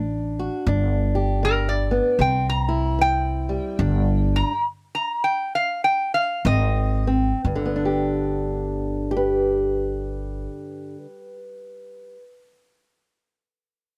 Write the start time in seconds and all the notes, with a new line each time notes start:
Already playing: A1 A3 D4
0.39 F#4
0.67 G1 G2 D4
1.15 G4
1.43 D3 A#4
1.69 D5
1.91 B3
2.19 C2 C3 C4 G5
2.49 A#5
2.68 E4
2.99 E3 G5
3.49 G3
3.79 G1 G2 D4
4.36 A#5
4.95 A#5
5.24 G5
5.55 F5
5.84 G5
6.14 F5
6.45 G#1 G#2 C4 D#5
7.07 C4
7.45 G1 G2
7.56 D3
7.65 B3
7.76 D4
7.85 G4
9.11 G4
9.17 B4